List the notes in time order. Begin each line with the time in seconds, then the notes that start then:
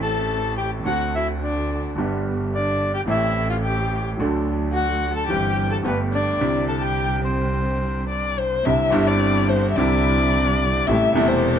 Already playing: A1 A2 E3 A3 C4 A4
0.02 A4 A5
0.58 G4 G5
0.84 D2 D3 A3 C4 F#4 F#5
1.15 E4 E5
1.42 D4 D5
1.96 G1 G2 D3 G3 B3 G4
2.55 D4 D5
2.94 G4 G5
3.05 A1 A2 E3 A3 C4 E4 G4
3.10 E5
3.50 F4 F5
3.63 G4 G5
4.17 D2 D3 F#3 A3 D4
4.22 A4
4.73 F#4 F#5
5.14 A4 A5
5.27 G1 G2 E3 G3 C4 G4 G5
5.32 G4
5.70 A4 A5
5.83 G1 G2 D3 A3 B3 B4
5.87 G4
6.12 D4 D5
6.39 C2 C3 D3 G3 C4
6.43 E4
6.68 A4 A5
6.81 G4 G5
7.23 C4 C5
8.09 D5
8.39 C5
8.64 C2 C3 D3 G3 C4 D4 E4 E5
8.90 G1 G2 D3 G3 C4 D4 E4
9.07 D5
9.49 C5
9.70 E5
9.76 C2 C3 D3 G3 C4 D4 E4 D5
10.87 A1 A2 C3 G3 A3 C4 E4 G4 E5
11.13 E1 E2 C3 G3 A3 C4 G4
11.17 E4
11.28 C5